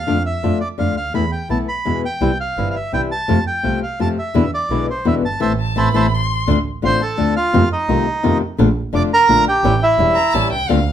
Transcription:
Already playing: F5
0.07 F2 D3 A3 D4 F4
0.26 E5
0.43 F2 D3 A3 D4 F4
0.60 D5
0.78 F2 D3 A3 D4 F4 F5
0.96 D2 F5
1.14 E2 E3 A3 B3 E4 B5
1.32 G5
1.49 B1 E3 A3 B3 E4 A5
1.68 B5
1.85 E2 B2 E3 G#3 B3 E4
2.05 G5
2.21 C2 C3 E3 G3 C4 E4
2.40 F5
2.58 G1 C3 E3 G3 C4 E4
2.71 F5
2.75 E5
2.93 C2 C3 E3 G3 C4 E4 G5
3.12 A5
3.28 F2 C3 F3 A3 C4 F4
3.47 G5
3.63 C2 C3 F3 A3 C4 F4
3.83 F5
3.99 F2 C3 F3 A3 C4 F4 A5
4.19 E5
4.34 E2 B2 D3 G#3 B3 E4
4.54 D5
4.70 B1 B2 D3 G#3 B3 E4
4.90 C5
5.05 E2 B2 D3 G#3 B3 E4 E5
5.23 G1 A5
5.40 A1 E3 A3 C4 C5 E5 A5
5.60 A5
5.76 A1 E3 A3 C4 C5 E5 A5 B5
5.94 A1 E3 A3 C4 C5 E5 A5
6.14 C6
6.47 D2 D3 A3 C4 F4
6.82 A1 D3 A3 C4 F4 C5 C6
7.02 A4 A5
7.17 D2 D3 A3 C4 F4
7.36 F4 F5
7.53 F2 C3 D#3 A3 C4 F4
7.72 D#4 D#5
7.88 C2 C3 D#3 A3 C4 F4
8.23 F2 C3 D#3 A3 C4 F4
8.58 A#1 D3 A3 D4 F4
8.93 F1 D3 A3 D4 F4 D5 D6
9.14 A#4 A#5
9.29 A#1 D3 A3 D4 F4
9.48 G4 G5
9.64 A1 E3 G3 C#4 E4
9.83 E4 E5
9.99 E1 E3 G3 C#4 E4
10.15 A#5
10.34 A1 E3 G3 C#4 E4 A5
10.52 C2 G5
10.69 D2 D3 A3 C4 F4 F5

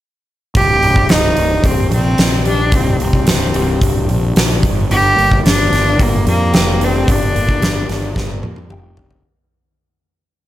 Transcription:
0.55 C1 C2 G4, kick, open hi-hat
0.82 C1 C3, open hi-hat
0.96 kick
1.09 C1 G2 D#4, snare, open hi-hat
1.37 C1 G3, open hi-hat
1.64 C1 G2 C4, kick, open hi-hat
1.91 A#1 C3 C4, open hi-hat
2.18 A#1 D#4, snare, open hi-hat
2.45 G3 D4, open hi-hat
2.72 C1 C2 C4, kick, open hi-hat
3.00 C1 C3 C4, open hi-hat
3.13 kick
3.27 C1 G2, snare, open hi-hat
3.54 C1 G3, open hi-hat
3.81 C1 G2, kick, open hi-hat
4.09 A#1 C3, open hi-hat
4.36 A#1 D#4, snare, open hi-hat
4.63 G1 G2, kick, open hi-hat
4.91 G1 G2 G4, open hi-hat
5.18 G1 A#3, open hi-hat
5.31 kick
5.45 G1 G3 D4, snare, open hi-hat
5.71 G1 D4, snare, open hi-hat
5.99 G1 G3 A#3, kick, open hi-hat
6.26 F2 A#3, open hi-hat
6.53 F1 G4, snare, open hi-hat
6.80 C4 D4, open hi-hat
7.08 G1 G2 D4, kick, open hi-hat
7.35 G1 A#3, open hi-hat
7.49 kick
7.61 G1 G3, snare, open hi-hat
7.89 G1 D4, snare, open hi-hat
8.15 G1 G3, kick, snare
8.43 F2 A#3, high tom
8.56 high tom
8.70 F1 G4, mid tom
8.97 D4, floor tom
9.11 floor tom

